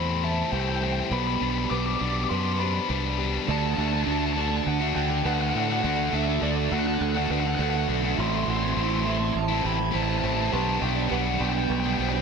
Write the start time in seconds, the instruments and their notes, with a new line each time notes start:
Already playing: fingered electric bass E2, distorted electric guitar A2 E3 A3 C4 E4, clean electric guitar A2 G3 A3 C5, ambient pad G4 C5 A5, felt piano C5, lead electric guitar B5
0.23 distorted electric guitar A2 E3 A3 C4 E4, clean electric guitar E4, felt piano E5, lead electric guitar A5
0.51 fingered electric bass C2, distorted electric guitar A2 E3 A3 C4 E4, clean electric guitar G3, felt piano C5, lead electric guitar G5
0.60 lead electric guitar G5
0.69 lead electric guitar G5
0.76 lead electric guitar G5
0.81 distorted electric guitar A2 E3 A3 C4 E4, clean electric guitar E4, lead electric guitar G5
0.93 lead electric guitar G5
1.00 lead electric guitar G5
1.10 fingered electric bass B1, distorted electric guitar B2 G3 B3 D4, clean electric guitar B3, felt piano B4, ambient pad D5 B5, lead electric guitar B5
1.20 lead electric guitar B5
1.27 lead electric guitar B5
1.36 lead electric guitar B5
1.40 fingered electric bass B1, distorted electric guitar B2 G3 B3 D4, clean electric guitar D4, lead electric guitar B5
1.50 lead electric guitar B5
1.58 lead electric guitar B5
1.66 distorted electric guitar B2, lead electric guitar B5
1.70 fingered electric bass B1, distorted electric guitar G3 B3 D4, clean electric guitar B3, felt piano B4, lead electric guitar D6
1.78 lead electric guitar D6
1.86 lead electric guitar D6
1.94 lead electric guitar D6
1.99 fingered electric bass B1, distorted electric guitar B2 G3 B3 D4, clean electric guitar D4, lead electric guitar D6
2.09 lead electric guitar D6
2.17 lead electric guitar D6
2.24 lead electric guitar D6
2.29 fingered electric bass F#2, distorted electric guitar B2 G3 B3 D4, clean electric guitar B4, felt piano B4, lead electric guitar C6
2.58 distorted electric guitar B2 G3 B3 D4, clean electric guitar G4, felt piano C5, lead electric guitar B5
2.88 fingered electric bass C2, distorted electric guitar B2 G3 B3 D4, clean electric guitar D4, felt piano B4
3.18 distorted electric guitar B2 G3 B3 D4, clean electric guitar G4
3.47 fingered electric bass D2, distorted electric guitar D3 A3 D4 F#4, ambient pad F#4 D5 A5, felt piano D5
3.51 lead electric guitar A5
3.58 lead electric guitar A5
3.66 lead electric guitar A5
3.74 fingered electric bass D2, distorted electric guitar D3 A3, felt piano E5, lead electric guitar A5
3.78 distorted electric guitar D4 F#4, lead electric guitar A5
3.88 overdriven electric guitar F#4, lead electric guitar A5
3.93 overdriven electric guitar A3 D4, lead electric guitar A5
4.03 fingered electric bass D2, distorted electric guitar D3 A3, lead electric guitar A5
4.08 distorted electric guitar D4 F#4, lead electric guitar A5
4.18 lead electric guitar A5
4.26 lead electric guitar A5
4.33 distorted electric guitar D3 A3, felt piano D5, lead electric guitar A5
4.37 distorted electric guitar D4 F#4
4.42 lead electric guitar A5
4.48 overdriven electric guitar D4 F#4, lead electric guitar A5, muted distorted electric guitar stroke
4.53 overdriven electric guitar A3
4.57 lead electric guitar A5
4.64 fingered electric bass D2, lead electric guitar A5
4.68 lead electric guitar F#5
4.79 distorted electric guitar A3 D4 F#4
4.94 fingered electric bass D2, distorted electric guitar D3 A3 D4 F#4, felt piano F#5, lead electric guitar G5
5.09 overdriven electric guitar A3 D4 F#4, muted distorted electric guitar stroke
5.23 fingered electric bass D2, distorted electric guitar D3 A3 D4 F#4, felt piano B4, lead electric guitar F#5
5.34 lead electric guitar F#5
5.39 overdriven electric guitar A3 D4 F#4, lead electric guitar F#5
5.50 distorted electric guitar D3, lead electric guitar F#5
5.54 fingered electric bass A2, distorted electric guitar A3 D4 F#4, lead electric guitar F#5
5.64 distorted electric guitar F#4, lead electric guitar F#5
5.69 distorted electric guitar A3 D4, lead electric guitar F#5
5.82 fingered electric bass D2, distorted electric guitar D3 A3 D4 F#4, felt piano A4, lead electric guitar F#5
6.11 fingered electric bass D2, distorted electric guitar D3 A3 D4 F#4, lead electric guitar E5
6.27 overdriven electric guitar A3 D4 F#4
6.41 fingered electric bass D2, distorted electric guitar D3 A3 D4 F#4, felt piano A4, lead electric guitar D5
6.70 fingered electric bass D2, distorted electric guitar D3 A3 D4 F#4, lead electric guitar F#5
6.80 lead electric guitar F#5
6.86 overdriven electric guitar A3 D4 F#4, lead electric guitar F#5, muted distorted electric guitar stroke
6.95 lead electric guitar F#5
7.01 fingered electric bass D2, felt piano A4, lead electric guitar F#5
7.09 lead electric guitar F#5
7.14 distorted electric guitar A3 D4 F#4, lead electric guitar F#5
7.26 distorted electric guitar D3, lead electric guitar F#5
7.30 fingered electric bass D2, distorted electric guitar A3 D4 F#4, felt piano B4, lead electric guitar F#5
7.40 lead electric guitar F#5
7.45 overdriven electric guitar A3 D4 F#4, lead electric guitar F#5, muted distorted electric guitar stroke
7.55 fingered electric bass D2, distorted electric guitar D3 A3, lead electric guitar F#5
7.60 distorted electric guitar D4 F#4, felt piano A4, lead electric guitar F#5
7.70 lead electric guitar F#5
7.74 overdriven electric guitar A3 D4 F#4, lead electric guitar F#5
7.88 fingered electric bass B1, distorted electric guitar D3 A3 D4 F#4
8.03 distorted electric guitar A3 D4 F#4
8.17 fingered electric bass A1, distorted electric guitar A2 E3 A3 C4 E4, ambient pad G4 C5 A5, felt piano E5, lead electric guitar C6
8.27 lead electric guitar C6
8.35 lead electric guitar C6
8.43 distorted electric guitar E3, lead electric guitar C6
8.47 fingered electric bass A1, distorted electric guitar A3 C4 E4, felt piano F#5, lead electric guitar C6
8.57 lead electric guitar C6
8.62 overdriven electric guitar A3 C4 E4, lead electric guitar C6
8.72 distorted electric guitar A2 E3, lead electric guitar C6
8.77 fingered electric bass A1, distorted electric guitar A3 C4 E4
8.81 lead electric guitar C6
8.88 lead electric guitar C6
8.95 lead electric guitar C6
9.02 distorted electric guitar E3 A3, felt piano E5, lead electric guitar C6
9.06 distorted electric guitar C4 E4, lead electric guitar C6
9.17 overdriven electric guitar E4, lead electric guitar C6, muted distorted electric guitar stroke
9.22 overdriven electric guitar A3 C4, lead electric guitar C6
9.33 fingered electric bass A1, lead electric guitar A5 C6
9.48 distorted electric guitar A3 C4 E4
9.62 fingered electric bass A1, distorted electric guitar E3 A3 C4 E4, felt piano G5, lead electric guitar B5
9.78 overdriven electric guitar A3 C4 E4, muted distorted electric guitar stroke
9.91 fingered electric bass A1, distorted electric guitar A2 E3 A3 C4 E4, felt piano C5, lead electric guitar A5
10.03 lead electric guitar A5
10.09 overdriven electric guitar A3 C4 E4, lead electric guitar A5
10.18 distorted electric guitar E3 A3, lead electric guitar A5
10.23 fingered electric bass A1, distorted electric guitar C4 E4, lead electric guitar A5
10.33 distorted electric guitar C4 E4, lead electric guitar A5
10.38 distorted electric guitar A3, lead electric guitar A5
10.51 fingered electric bass B1, distorted electric guitar B2 G3 B3 D4, felt piano B4, ambient pad D5 B5, lead electric guitar A5
10.80 fingered electric bass B1, distorted electric guitar B2 G3 B3 D4, lead electric guitar G5
10.96 overdriven electric guitar G3 B3 D4
11.09 fingered electric bass B1, distorted electric guitar B2 G3 B3 D4, felt piano B4, lead electric guitar F#5
11.38 fingered electric bass B1, distorted electric guitar B2 G3 B3 D4, lead electric guitar G5
11.49 lead electric guitar G5
11.54 overdriven electric guitar G3 B3 D4, muted distorted electric guitar stroke
11.58 lead electric guitar G5
11.64 lead electric guitar G5
11.70 fingered electric bass B1, felt piano B4, lead electric guitar G5
11.80 distorted electric guitar D4, lead electric guitar G5
11.85 distorted electric guitar G3 B3, lead electric guitar G5
11.94 distorted electric guitar B2, lead electric guitar G5
11.99 fingered electric bass B1, distorted electric guitar G3 B3 D4, felt piano C5, lead electric guitar G5
12.09 lead electric guitar G5
12.13 overdriven electric guitar G3 B3 D4, lead electric guitar G5, muted distorted electric guitar stroke